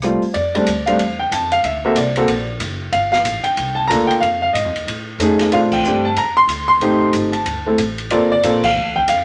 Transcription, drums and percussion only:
0.02 cross-stick, closed hi-hat
0.22 open hi-hat
0.34 ride
0.55 ride
0.67 hi-hat pedal, ride
0.87 ride
0.99 ride
1.32 hi-hat pedal, ride
1.52 ride
1.64 ride
1.96 hi-hat pedal, ride
2.16 ride
2.28 ride
2.60 hi-hat pedal, ride
2.93 ride
3.13 snare
3.25 hi-hat pedal, ride
3.44 ride
3.57 ride
3.90 hi-hat pedal, ride
4.11 ride
4.23 ride
4.55 hi-hat pedal, ride
4.76 ride
4.88 ride
5.20 hi-hat pedal, ride
5.39 snare, ride
5.52 ride
5.72 kick, crash
5.84 hi-hat pedal
6.17 ride
6.49 hi-hat pedal, ride
6.81 ride
7.13 hi-hat pedal, ride
7.33 ride
7.46 ride
7.78 hi-hat pedal, ride
7.98 ride
8.10 ride
8.43 hi-hat pedal, ride
8.63 kick, crash
8.95 kick
9.08 hi-hat pedal, ride

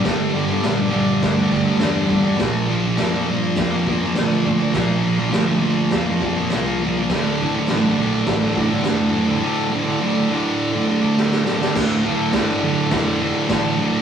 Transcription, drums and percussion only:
0.05 kick, snare, crash
0.63 snare, crash
1.22 kick, snare, crash
1.52 kick
1.80 snare, crash
2.11 kick
2.39 kick, snare, crash
2.97 snare, crash
3.56 kick, snare, crash
3.87 kick
4.16 snare, crash
4.74 kick, snare, crash
5.33 snare, crash
5.91 kick, snare, crash
6.22 kick
6.50 snare, crash
7.10 kick, snare, crash
7.68 snare, crash
8.26 kick, snare, crash
8.56 kick
8.84 snare, crash
11.17 snare
11.31 snare
11.46 snare
11.61 snare
11.76 kick, snare, crash
12.33 kick, snare, crash
12.91 kick, snare, crash
13.49 kick, snare, crash

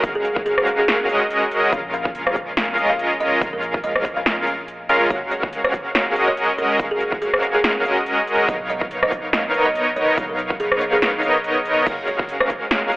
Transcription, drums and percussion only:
0.04 kick, closed hi-hat
0.25 closed hi-hat
0.36 kick
0.46 closed hi-hat
0.58 cross-stick
0.67 closed hi-hat
0.88 snare, closed hi-hat
1.09 closed hi-hat
1.31 closed hi-hat
1.52 closed hi-hat
1.73 kick, closed hi-hat
1.94 closed hi-hat
2.05 kick
2.15 closed hi-hat
2.27 cross-stick
2.36 kick, closed hi-hat
2.57 snare, closed hi-hat
2.78 closed hi-hat
2.99 closed hi-hat
3.21 closed hi-hat
3.41 kick, closed hi-hat
3.63 closed hi-hat
3.74 kick
3.84 closed hi-hat
3.96 cross-stick
4.05 kick, closed hi-hat
4.26 snare, closed hi-hat
4.47 closed hi-hat
4.68 closed hi-hat
4.89 closed hi-hat
5.10 kick, closed hi-hat
5.32 closed hi-hat
5.43 kick
5.53 closed hi-hat
5.64 cross-stick
5.74 kick, closed hi-hat
5.95 snare, closed hi-hat
6.16 closed hi-hat
6.37 closed hi-hat
6.58 closed hi-hat
6.79 kick, closed hi-hat
7.01 closed hi-hat
7.12 kick
7.22 closed hi-hat
7.34 cross-stick
7.43 closed hi-hat
7.64 snare, closed hi-hat
7.85 closed hi-hat
8.06 closed hi-hat
8.28 closed hi-hat
8.49 kick, closed hi-hat
8.70 closed hi-hat
8.81 kick
8.91 closed hi-hat
9.03 cross-stick
9.12 kick, closed hi-hat
9.33 snare, closed hi-hat
9.54 closed hi-hat
9.76 closed hi-hat
9.96 closed hi-hat
10.18 kick, closed hi-hat
10.39 closed hi-hat
10.50 kick
10.60 closed hi-hat
10.72 cross-stick
10.81 closed hi-hat
11.02 snare, closed hi-hat
11.23 closed hi-hat
11.44 closed hi-hat
11.65 closed hi-hat
11.87 kick, closed hi-hat, crash
12.08 closed hi-hat
12.19 kick
12.29 closed hi-hat
12.40 cross-stick
12.50 kick, closed hi-hat
12.71 snare, closed hi-hat
12.92 closed hi-hat

